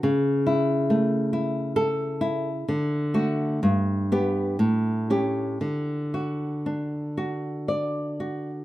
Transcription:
\new Staff \with { instrumentName = "Nylon-string guitar" } { \time 3/4 \key d \major \tempo 4 = 62 << { r2 a'4 | r8 fis'8 r8 g'8 r8 g'8 | r2 d''4 | } \\ { cis8 e'8 a8 e'4 e'8 | d8 a8 g,8 b8 a,8 cis'8 | d8 fis'8 d'8 fis'4 fis'8 | } >> }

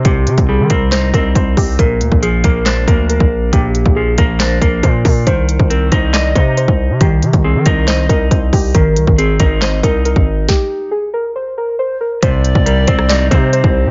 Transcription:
<<
  \new Staff \with { instrumentName = "Pan flute" } { \time 4/4 \key c \minor \tempo 4 = 138 r1 | r1 | r1 | r1 |
r1 | r1 | r1 | d''2~ d''8 c''4. | }
  \new Staff \with { instrumentName = "Synth keys" } { \time 4/4 \key c \minor g'4 aes'8 bes'8 c''8 bes'8 c''8 g'8 | bes'4 aes'8 bes'8 c''8 bes'8 bes'4 | g'4 aes'8 bes'8 c''8 bes'8 c''8 bes'8 | c''4 bes'8 c''8 d''8 c''8 c''4 |
g'4 aes'8 bes'8 c''8 bes'8 c''8 g'8 | bes'4 aes'8 bes'8 c''8 bes'8 bes'4 | g'4 aes'8 bes'8 c''8 bes'8 c''8 bes'8 | c''4 bes'8 c''8 d''8 c''8 c''4 | }
  \new Staff \with { instrumentName = "Ambient pad" } { \time 4/4 \key c \minor r1 | r1 | r1 | r1 |
r1 | r1 | r1 | <c c' ees' g'>1 | }
  \new Staff \with { instrumentName = "Clean electric guitar" } { \time 4/4 \key c \minor <c c' ees'>4 g8 c'8 ees'8 c'4. | bes,4 f8 bes8 d'8 bes4. | bes,4 f8 bes8 d'8 bes4. | ees4 c'8 ees'8 ees''8 ees'4. |
ees4 c'8 ees'8 ees''8 ees'4. | ees4 c'8 ees'8 ees''8 ees'4.~ | ees'4 r2. | c4 g8 c'8 ees'8 c'4. | }
  \new Staff \with { instrumentName = "808-style bass" } { \clef bass \time 4/4 \key c \minor c,8 c16 c,8 ees16 c,4 c,8 c,8 c,8 | bes,,8 d,16 bes,,8. bes,,4 d,8. bes,,8. | bes,,8. bes,,8. bes,,4 bes,,8 bes,8 bes,8 | c,8. c,8. c,4 c8. c,8 c16 |
c,8 c16 c,8 ees16 c,4 c,8 c,8 c,8 | aes,,8 c,16 aes,,8. aes,,4 c,8. aes,,8. | r1 | c,8. c,8. c,4 c8. c,8 c16 | }
  \new DrumStaff \with { instrumentName = "Drums" } \drummode { \time 4/4 <hh bd>8 hh16 <hh bd>16 r8 <hh bd>8 <hc hh sn>8 <hh bd>8 <hh bd>8 <hho bd>8 | <hh bd>8 hh16 bd16 hh8 <hh bd>8 <hc hh sn>8 <hh bd>8 hh16 bd8. | <hh bd>8 hh16 bd16 r8 <hh bd>8 <hc hh sn>8 <hh bd>8 <hh bd>8 <hho bd>8 | <hh bd>8 hh16 bd16 hh8 <hh bd>8 <hc hh sn>8 <hh bd>8 hh16 bd8. |
<hh bd>8 hh16 <hh bd>16 r8 <hh bd>8 <hc hh sn>8 <hh bd>8 <hh bd>8 <hho bd>8 | <hh bd>8 hh16 bd16 hh8 <hh bd>8 <hc hh sn>8 <hh bd>8 hh16 bd8. | <bd sn>4 r4 r4 r4 | <hh bd>8 hh16 bd16 hh8 <hh bd>16 ss16 <hc hh sn>8 <hh bd>8 hh16 bd8. | }
>>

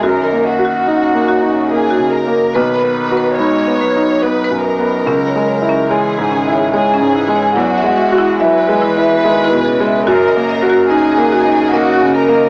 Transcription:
<<
  \new Staff \with { instrumentName = "Marimba" } { \time 3/4 \key fis \mixolydian \tempo 4 = 72 fis'16 dis''16 dis''16 fis'16 dis''16 r16 fis'16 dis''16 dis''16 fis'16 ais'16 dis''16 | b'16 b''16 b''16 b'16 b''16 r16 b'16 b''16 b''16 b'16 dis''16 b''16 | cis'16 cis''16 cis''16 cis'16 cis''16 r16 cis'16 cis''16 cis''16 cis'16 e'16 cis''16 | e'16 e''16 e''16 e'16 e''16 r16 e'16 e''16 e''16 e'16 gis'16 e''16 |
fis'16 dis''16 dis''16 fis'16 dis''16 r16 fis'16 dis''16 dis''16 fis'16 ais'16 dis''16 | }
  \new Staff \with { instrumentName = "Violin section" } { \time 3/4 \key fis \mixolydian ais'8 fis'4. gis'8 ais'8 | b'4 cis''4 b'8 ais'8~ | ais'4 gis'4 gis'4 | fis'4 b'2 |
ais'4 gis'4 fis'8 ais'8 | }
  \new Staff \with { instrumentName = "Grand piano" } { \time 3/4 \key fis \mixolydian \tuplet 3/2 { fis,8 ais8 fis'8 dis'8 ais8 dis'8 ais8 cis8 ais8 } | \tuplet 3/2 { b,,8 b8 fis'8 dis'8 b8 dis'8 b8 fis,8 b8 } | \tuplet 3/2 { cis,8 gis8 e'8 gis8 gis,8 e'8 gis8 gis,8 gis8 } | \tuplet 3/2 { e,8 gis8 fis'8 e'8 gis8 e'8 gis8 b,8 gis8 } |
\tuplet 3/2 { fis,8 ais8 fis'8 dis'8 ais8 dis'8 ais8 cis8 ais8 } | }
  \new Staff \with { instrumentName = "Cello" } { \clef bass \time 3/4 \key fis \mixolydian dis4 cis2 | dis4 gis8 fis4.~ | fis4 e8 dis8 cis8 e8 | fis8 gis8 fis8 e8 dis8 cis8~ |
cis4 cis2 | }
>>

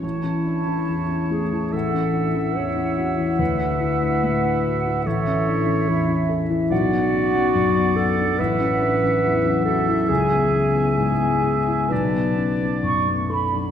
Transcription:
<<
  \new Staff \with { instrumentName = "Flute section" } { \time 4/4 \key a \major \tempo 4 = 71 a''2 fis''2~ | fis''2 e''2 | fis''1 | gis''2 a''4 cis'''8 b''8 | }
  \new Staff \with { instrumentName = "Oboe" } { \time 4/4 \key a \major cis''2 e''2~ | e''2 cis''4. r8 | d''2 e''2~ | e''2 d''4. r8 | }
  \new Staff \with { instrumentName = "Clarinet" } { \time 4/4 \key a \major e'4. gis'8 a'4 cis''4 | b'2 a'4 e'8 r8 | fis'4. a'8 b'4. a'8 | gis'4 gis'4 b'4 r4 | }
  \new Staff \with { instrumentName = "Grand piano" } { \time 4/4 \key a \major a,,16 cis'16 d'16 cis'16 e,16 cis'16 a16 e'16 a,,16 cis'16 d'16 cis'16 e,16 cis'16 fis'16 e'16 | d,16 d'16 e'16 d'16 a,16 d'16 fis'16 e'16 a,,16 cis'16 d'16 cis'16 e,16 cis'16 a'16 e'16 | b,,16 b16 cis'16 b16 fis,16 b16 a'16 d'16 a,,16 cis'16 d'16 cis'16 e,16 cis'16 fis'16 e'16 | cis,16 b16 cis'16 b16 gis,16 b16 gis'16 e'16 b,,16 b16 cis'16 b16 fis,16 b16 a'16 d'16 | }
  \new Staff \with { instrumentName = "Harp" } { \time 4/4 \key a \major a,16 e16 e'16 e16 e'16 cis'16 e'16 e16 a,16 e16 e'16 e16 e'16 cis'16 e'16 e16 | d16 a16 e'16 a16 e'16 d'16 e'16 a16 a,16 e16 e'16 e16 e'16 cis'16 e'16 e16 | b,16 fis16 d'16 fis16 d'16 b8 fis16 a,16 e16 e'16 e16 e'16 fis16 e'16 e16 | cis16 cis'16 e'16 cis'16 e'16 gis16 e'16 cis'16 b,16 fis16 d'16 fis16 d'16 a16 d'16 fis16 | }
>>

